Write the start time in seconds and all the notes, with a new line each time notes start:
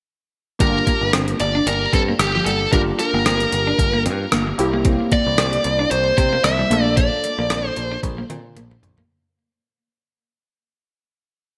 0.59 G1 G3 A#3 D4 F4 G4 A#4, kick, closed hi-hat
0.76 muted clean electric guitar stroke
0.87 A#3, kick, closed hi-hat
1.01 G1
1.13 G1 C4, cross-stick, closed hi-hat
1.28 closed hi-hat
1.40 G1 D5, muted clean electric guitar stroke, closed hi-hat
1.55 D4
1.67 G1 A#4, muted clean electric guitar stroke, closed hi-hat
1.93 G2 C4 A4, kick, closed hi-hat
2.09 A#3
2.19 G1 G4, muted clean electric guitar stroke, cross-stick, closed hi-hat
2.35 F3
2.46 G1 G3 A4, closed hi-hat
2.72 G1 G3 A#3 D4 F4 G4 A#4, kick, closed hi-hat
2.99 A#4, muted clean electric guitar stroke, closed hi-hat
3.14 G1 A#3
3.26 G1 C4, cross-stick, closed hi-hat
3.40 closed hi-hat
3.52 G1, muted clean electric guitar stroke, closed hi-hat
3.67 D4
3.79 G1, muted clean electric guitar stroke, kick, closed hi-hat
3.93 A#3
4.06 G2 C4, closed hi-hat
4.32 G1 A#3, cross-stick, closed hi-hat
4.47 muted clean electric guitar stroke
4.58 C2 A#3 C4 E4 G4, closed hi-hat
4.73 A#3
4.85 C4, kick, closed hi-hat
5.00 muted clean electric guitar stroke
5.12 A#3 D5, kick, closed hi-hat
5.27 C2
5.38 C2 C4, cross-stick, closed hi-hat
5.53 closed hi-hat
5.64 C2, muted clean electric guitar stroke, closed hi-hat
5.79 D4
5.91 C2 C5, muted clean electric guitar stroke, closed hi-hat
6.18 C3 C4 C5, kick, closed hi-hat
6.33 A#3
6.44 C2 E5, muted clean electric guitar stroke, cross-stick, closed hi-hat
6.59 G3
6.70 A#1 A3 A#3 D4 F4 A4, closed hi-hat
6.97 A#3 D5, kick, closed hi-hat
7.24 muted clean electric guitar stroke, closed hi-hat
7.39 A#1 A#3
7.50 A#1 C4, cross-stick, closed hi-hat
7.68 C5
7.76 A#1, muted clean electric guitar stroke, closed hi-hat
7.92 D4
8.03 A#1, muted clean electric guitar stroke, kick, closed hi-hat, high tom
8.18 A#3
8.30 A#2 C4, closed hi-hat, mid tom
8.56 A#1 A#3, closed hi-hat, mid tom
8.71 muted clean electric guitar stroke, mid tom
8.83 A#1, closed hi-hat, floor tom
8.98 A#3, floor tom